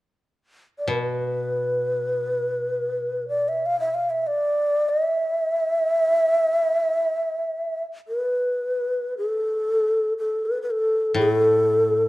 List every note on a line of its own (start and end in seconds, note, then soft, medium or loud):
0.79 0.90 D5 soft
0.88 4.26 B2 soft
0.88 3.28 B4 soft
3.28 3.50 D5 medium
3.49 3.67 E5 medium
3.66 3.79 F5 medium
3.80 3.96 E5 medium
3.94 4.11 F5 medium
4.10 4.28 E5 medium
4.27 4.90 D5 medium
4.89 7.83 E5 medium
8.08 9.14 B4 soft
9.18 10.13 A4 medium
10.18 10.47 A4 medium
10.46 10.62 B4 medium
10.62 10.72 B4 soft
10.71 11.17 A4 medium
11.14 12.09 A2 soft
11.14 11.31 G#4 medium
11.31 12.09 A4 medium